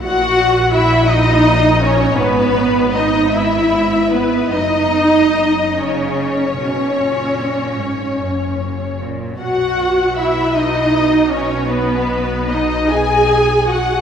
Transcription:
<<
  \new Staff \with { instrumentName = "Violin section" } { \time 12/8 \key b \major \tempo 4. = 51 fis''4 e''8 dis''4 cis''8 b'4 dis''8 e''4 b'8 | dis''4. cis''1 r8 | fis''4 e''8 dis''4 cis''8 b'4 dis''8 gis''4 fis''8 | }
  \new Staff \with { instrumentName = "Violin section" } { \time 12/8 \key b \major fis''4 e''8 dis''4 cis''8 b'4 dis''8 e''4 b'8 | dis''4. cis''1 r8 | fis''4 e''8 dis''4 cis''8 b'4 dis''8 gis''4 fis''8 | }
  \new Staff \with { instrumentName = "Viola section" } { \time 12/8 \key b \major fis'4 e'8 dis'4 cis'8 b4 dis'8 e'4 b8 | dis'4. cis'1 r8 | fis'4 e'8 dis'4 cis'8 b4 dis'8 gis'4 fis'8 | }
  \new Staff \with { instrumentName = "Cello section" } { \clef bass \time 12/8 \key b \major ais,2. gis,2. | fis,4. cis4 b,8 ais,4 gis,8 fis,4 ais,8 | b,1. | }
  \new Staff \with { instrumentName = "Double bass section" } { \clef bass \time 12/8 \key b \major ais,,2. gis,,2. | fis,,1~ fis,,4.~ fis,,16 r16 | b,,1. | }
>>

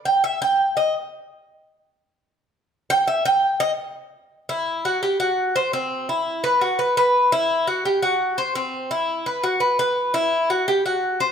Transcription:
\new Staff \with { instrumentName = "Cuban tres" } { \time 4/4 \key e \minor \tempo 4 = 170 g''8 e''8 g''4 dis''8 r4. | r1 | g''8 e''8 g''4 dis''8 r4. | r8 e'4 fis'8 g'8 fis'4 c''8 |
c'4 e'4 b'8 fis'8 b'8 b'8~ | b'8 e'4 fis'8 g'8 fis'4 c''8 | c'4 e'4 b'8 fis'8 b'8 b'8~ | b'8 e'4 fis'8 g'8 fis'4 c''8 | }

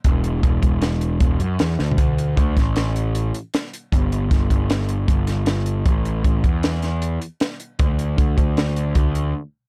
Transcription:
<<
  \new Staff \with { instrumentName = "Picked electric bass" } { \clef bass \time 5/4 \key a \mixolydian \tempo 4 = 155 e,,4 e,,8 e,,4. e,,8 fis,8 e,8 d,8 | d,4 d,8 a,,2 r4. | g,,4 g,,8 g,,4. g,,2 | a,,4 a,,8 e,2 r4. |
d,4 d,8 d,4. d,4 r4 | }
  \new DrumStaff \with { instrumentName = "Drums" } \drummode { \time 5/4 <hh bd>8 hh8 <hh bd>8 <hh bd>8 <hh sn>8 hh8 <hh bd>8 hh8 \tuplet 3/2 { <hh sn>16 r16 r16 sn16 r16 tomfh16 } | <hh bd>8 hh8 <hh bd>8 <hh bd sn>8 <hh sn>8 hh8 hh8 hh8 <hh sn>8 hh8 | <hh bd>8 hh8 <hh bd sn>8 <hh bd>8 <hh sn>8 hh8 <hh bd>8 <hh sn>8 <hh sn>8 hh8 | <hh bd>8 hh8 <hh bd>8 <hh bd>8 <hh sn>8 <hh sn>8 hh8 hh8 <hh sn>8 hh8 |
<hh bd>8 hh8 <hh bd>8 <hh bd>8 <hh sn>8 hh8 <hh bd>8 hh8 r4 | }
>>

